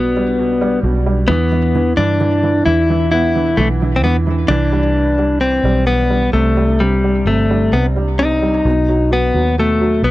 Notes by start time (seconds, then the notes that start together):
Already playing: B1 B2 G3 B3
0.17 G3
0.39 B2
0.61 G3
0.83 B1 B2
1.06 G3
1.28 E2 E3 B3
1.52 E3
1.75 E3
1.97 G2 E3 D4
2.21 E3
2.43 E3
2.66 E2 E3 E4
2.90 E3
3.12 B3 E4
3.36 E3
3.57 B1 E3 A3
3.82 E3
3.96 C4
4.03 E2 E3 B3
4.27 E3
4.48 C2 E3 D4
4.72 G3
5.18 G3
5.41 C4
5.64 B1 G3
5.87 B3
6.10 G3
6.33 C2 C3 A3
6.57 G3
6.80 C3 G3
7.04 G3
7.25 G1 C3 A3
7.50 G3
7.72 C2 C3 B3
7.96 G3
8.19 C3 D#4
8.42 G3
8.65 B1 B2
8.89 F#3
9.11 B2 B3
9.34 D#2 F#3
9.58 B2 A3
9.81 F#3
10.02 B1 B2 B3